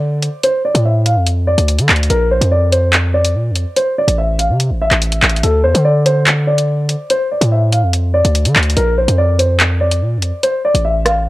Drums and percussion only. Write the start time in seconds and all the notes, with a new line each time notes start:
0.22 closed hi-hat
0.43 closed hi-hat
0.75 closed hi-hat
1.06 closed hi-hat
1.27 closed hi-hat
1.58 closed hi-hat
1.68 closed hi-hat
1.79 closed hi-hat
1.89 clap, closed hi-hat
1.96 closed hi-hat
2.03 closed hi-hat
2.10 closed hi-hat
2.42 closed hi-hat
2.73 closed hi-hat
2.93 clap, closed hi-hat
3.25 closed hi-hat
3.56 closed hi-hat
3.77 closed hi-hat
4.08 closed hi-hat
4.39 closed hi-hat
4.60 closed hi-hat
4.91 clap, closed hi-hat
5.02 closed hi-hat
5.12 closed hi-hat
5.22 clap, closed hi-hat, open hi-hat
5.29 closed hi-hat
5.36 closed hi-hat
5.43 closed hi-hat
5.75 closed hi-hat
6.06 closed hi-hat
6.27 clap, closed hi-hat
6.58 closed hi-hat
6.89 closed hi-hat
7.10 closed hi-hat
7.41 closed hi-hat
7.72 closed hi-hat
7.93 closed hi-hat
8.25 closed hi-hat
8.35 closed hi-hat
8.45 closed hi-hat
8.56 clap, closed hi-hat
8.63 closed hi-hat
8.70 closed hi-hat
8.77 closed hi-hat
9.08 closed hi-hat
9.39 closed hi-hat
9.60 clap, closed hi-hat
9.91 closed hi-hat
10.22 closed hi-hat
10.43 closed hi-hat
10.75 closed hi-hat
11.06 cross-stick, closed hi-hat